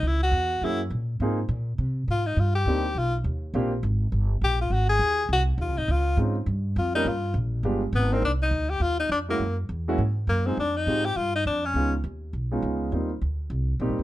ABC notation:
X:1
M:4/4
L:1/8
Q:"Swing" 1/4=205
K:Ab
V:1 name="Tenor saxophone"
_F _G3 F z3 | z6 F E | F G3 F z3 | z6 G F |
_G A3 G z F E | F2 z4 F E | F2 z4 =B, C | [K:Cm] D E2 G F E D B,- |
B, z4 z ^A, C | D E2 G F E D _D- | _D z6 z | z8 |]
V:2 name="Grand piano"
z4 [B,D_F_GA] z3 | [B,CEFA] z6 z | z2 [B,C=DEG] z4 z | [B,C=DFG] z6 z |
z8 | z2 [A,CDEF] z4 [G,B,DFB] | z4 [A,=B,=DFG] z2 [_B,CDEB] | [K:Cm] z6 z [A,B,_D=E^F] |
z3 [^G,^A,^C=E^F] z3 [G,=C_E=F^G] | z2 [A,CEFG] z4 z | [A,_C_DEF] z4 [A,CDEF]3 | [G,B,CEF] z4 z [G,B,CEG] z |]
V:3 name="Upright bass" clef=bass
D,,2 _F,,2 _G,,2 B,,2 | A,,2 B,,2 C,2 A,,2 | G,,2 =D,,2 =B,,,2 ^D,,2 | B,,,2 A,,,2 G,,,2 B,,,2 |
A,,,2 E,,2 C,,2 (3E,, C,, A,,, | D,,2 A,,2 G,,2 F,,2 | G,,2 B,,,2 G,,,2 A,,,2 | [K:Cm] C,,2 D,,2 E,,2 F,,2 |
^F,,2 =E,,2 ^G,,2 F,,2 | F,,2 A,,2 G,,2 F,,2 | _D,,2 E,,2 _C,,2 D,,2 | E,,2 D,,2 C,,2 (3B,,, G,,, E,,, |]